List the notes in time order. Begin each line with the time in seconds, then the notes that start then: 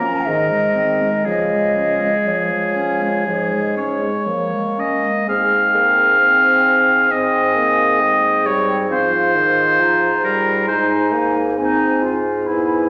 Already playing: F3 A#4 A#5
0.01 C#4
0.26 G#2 D#3 D#5
0.50 G#3
0.75 C4
1.01 G#3
1.25 C#3 F3 G#4 D#5
1.52 G#3
1.78 C#4
2.01 G#3
2.25 F3 C#5
2.52 G#3
2.75 C#4
3.01 G#3
3.26 G#2 F3 G#3
3.53 G#3
3.77 C#4 C#5
4.03 G#3
4.26 F3 A#3
4.54 G#3
4.78 C#4 D#5
5.03 G#3
5.27 G#2 G#3 C4 F5 G#5
5.74 A#3
6.19 C4
7.11 C4 D#5
7.55 A#3
8.00 G#3 G5
8.45 G3 C#5
8.90 F3 F4 C5 F5
9.35 D#3
9.79 F3 A#5
10.23 G3 A#4
10.67 G#2 G#3 D#4 C5 G#5
11.12 A#3
11.58 C4 D#4 G#5
12.03 F4
12.46 B3 E4 G#5